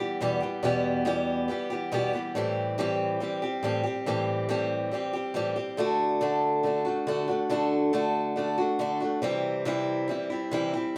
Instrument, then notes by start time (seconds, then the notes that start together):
steel-string acoustic guitar
Already playing: G4
0.00 E3 G3 B3
0.21 E2 B2 E3 G3 B3 G4
0.40 E3 G3 B3 G4
0.63 E2 B2 E3 G3 B3 G4
1.05 E2 B2 E3 G3 B3 G4
1.48 E3 G3 B3 G4
1.70 E3 G3 B3 G4
1.92 E2 B2 E3 G3 B3 G4
2.13 E3 G3 B3 G4
2.35 A2 E3 G3 C4 G4
2.78 A2 E3 G3 C4 G4
3.20 E3 G3 C4 G4
3.42 G3 C4 G4
3.63 A2 E3 G3 C4 G4
3.83 G3 C4 G4
4.06 A2 E3 G3 C4 G4
4.49 A2 E3 G3 C4 G4
4.92 E3 G3 C4 G4
5.13 G3 C4 G4
5.34 A2 E3 G3 C4 G4
5.56 G3 C4 G4
5.77 D3 A3 D4 F#4
6.21 D3 A3 D4 F#4
6.63 D3 A3 D4 F#4
6.85 A3 D4 F#4
7.07 D3 A3 D4 F#4
7.28 A3 D4 F#4
7.50 D3 A3 D4 F#4
7.93 D3 A3 D4 F#4
8.36 D3 A3 D4 F#4
8.58 A3 D4 F#4
8.79 D3 A3 D4 F#4
9.00 A3 D4 F#4
9.22 C3 E3 G3 C4 E4
9.65 C3 E3 G3 C4 E4
10.08 E3 G3 C4 E4
10.30 G3 C4 E4
10.51 C3 E3 G3 C4 E4
10.73 G3 C4 E4